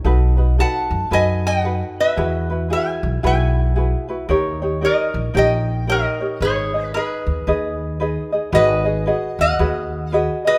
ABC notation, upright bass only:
X:1
M:4/4
L:1/8
Q:"Swing" 1/4=113
K:G#m
V:1 name="Upright bass" clef=bass
B,,,3 F,, F,,4 | E,,3 B,,, B,,,4 | D,,3 A,,, A,,,4 | G,,,3 D,, D,,4 |
G,,,3 D,, D,,4 |]